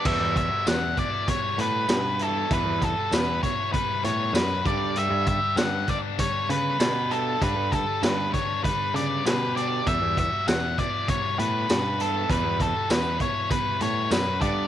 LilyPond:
<<
  \new Staff \with { instrumentName = "Lead electric guitar" } { \time 4/4 \key e \dorian \tempo 4 = 98 e''8 e''8 fis''8 d''8 cis''8 b'4 a'8 | b'8 a'8 b'8 cis''8 b'8 cis''8 b'8 d''8 | e''8 e''8 fis''8 d''8 cis''8 b'4 a'8 | b'8 a'8 b'8 cis''8 b'8 d''8 b'8 d''8 |
e''8 e''8 fis''8 d''8 cis''8 b'4 a'8 | b'8 a'8 b'8 cis''8 b'8 cis''8 b'8 d''8 | }
  \new Staff \with { instrumentName = "Overdriven electric guitar" } { \time 4/4 \key e \dorian g8 fis'8 b8 e'8 g8 b8 fis'8 e'8 | g8 fis'8 b8 e'8 g8 b8 fis'8 g8 | g8 g'8 b8 d'8 g8 b8 g'8 d'8 | g8 g'8 b8 d'8 g8 b8 g'8 d'8 |
g8 fis'8 b8 e'8 g8 b8 fis'8 e'8 | g8 fis'8 b8 e'8 g8 b8 fis'8 b8 | }
  \new Staff \with { instrumentName = "Overdriven electric guitar" } { \clef bass \time 4/4 \key e \dorian <e, b, e>8 <e, b,>8 <e, b,>8 <e, b,>8 <e, b,>8 <e, b,>8 <e, b,>8 <e, b, e>8 | <e, b, e>8 <e, b,>8 <e, b,>8 <e, b,>8 <e, b,>8 <e, b,>8 <e, b,>8 <g, d g>8 | <g, d g>8 <g, d>8 <g, d>8 <g, d>8 <g, d>8 <g, d>8 <g, d>8 <g, d g>8 | <g, d g>8 <g, d>8 <g, d>8 <g, d>8 <g, d>8 <g, d>8 <g, d>8 <g, d g>8 |
<e, b, e>8 <e, b,>8 <e, b,>8 <e, b,>8 <e, b,>8 <e, b,>8 <e, b,>8 <e, b, e>8 | <e, b, e>8 <e, b,>8 <e, b,>8 <e, b,>8 <e, b,>8 <e, b,>8 <e, b,>8 <g, d g>8 | }
  \new Staff \with { instrumentName = "Picked electric bass" } { \clef bass \time 4/4 \key e \dorian e,16 e,8 r16 e,8 r4 a,8 g,4 | e,16 e,8 r16 e,8 r4 a,8 fis,8 g,8~ | g,16 g,8 r16 g,8 r4 cis8 b,4 | g,16 g,8 r16 g,8 r4 cis8 b,4 |
e,16 e,8 r16 e,8 r4 a,8 g,4 | e,16 e,8 r16 e,8 r4 a,8 fis,8 g,8 | }
  \new DrumStaff \with { instrumentName = "Drums" } \drummode { \time 4/4 <cymc bd>8 <hh bd>8 <hh sn tamb>8 <hh bd>8 <hh bd>8 hh8 <hh sn tamb>8 hh8 | <hh bd>8 <hh bd>8 <hh sn tamb>8 <hh bd>8 <hh bd>8 hh8 <hh sn tamb>8 <hh bd>8 | hh8 <hh bd>8 <hh sn tamb>8 <hh bd>8 <hh bd>8 hh8 <hh sn tamb>8 hh8 | <hh bd>8 <hh bd>8 <hh sn tamb>8 <hh bd>8 <hh bd>8 hh8 <hh sn tamb>8 hh8 |
<hh bd>8 <hh bd>8 <hh sn tamb>8 <hh bd>8 <hh bd>8 hh8 <hh sn tamb>8 hh8 | <hh bd>8 <hh bd>8 <hh sn tamb>8 <hh bd>8 <hh bd>8 hh8 <hh sn tamb>8 <hh bd>8 | }
>>